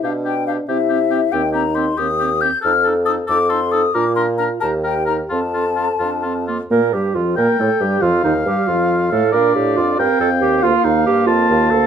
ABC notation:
X:1
M:6/8
L:1/16
Q:3/8=92
K:Cmix
V:1 name="Flute"
f2 g2 f2 e6 | [K:Bb] g2 b2 c'2 e'4 g'2 | f'4 e'2 d'2 c'2 e'2 | d'2 c'2 b2 a2 g2 b2 |
a8- a2 z2 | B2 G2 F2 B2 A2 G2 | F2 E2 G2 F4 A2 | f6 f6- |
f6 f6 |]
V:2 name="Oboe"
G2 G2 G2 G2 G2 G2 | [K:Bb] G2 G2 G2 G2 G2 G2 | A2 A2 A2 A2 A2 A2 | B2 B2 B2 B2 B2 B2 |
F2 F2 F2 F2 F2 F2 | z6 g6 | f12 | d6 g6 |
f6 a6 |]
V:3 name="Clarinet"
D2 D2 D2 C2 C2 C2 | [K:Bb] C2 C2 C2 C2 C2 C2 | E2 E2 E2 E2 E2 E2 | D2 D2 D2 E2 E2 E2 |
C2 C2 C2 D2 C2 B,2 | B2 G2 F2 B2 A2 G2 | F2 E2 G2 F4 A2 | B2 G2 F2 B2 A2 G2 |
F2 E2 G2 F4 A2 |]
V:4 name="French horn"
D6 E6 | [K:Bb] E6 G4 z2 | A6 A6 | F6 G6 |
A8- A z3 | B,2 G,2 F,2 B,2 A,2 G,2 | F,2 E,2 G,2 F,4 A,2 | D6 C6 |
B,12 |]
V:5 name="Bassoon" clef=bass
=B,,6 C,6 | [K:Bb] E,,6 E,,6 | F,,6 F,,6 | B,,6 E,,6 |
F,,6 F,,6 | B,,2 G,,2 F,,2 B,,2 A,,2 G,,2 | F,,2 E,,2 G,,2 F,,4 A,,2 | B,,2 A,,2 F,,2 G,,2 F,,2 E,,2 |
D,,2 E,,2 G,,2 F,,2 E,,2 D,,2 |]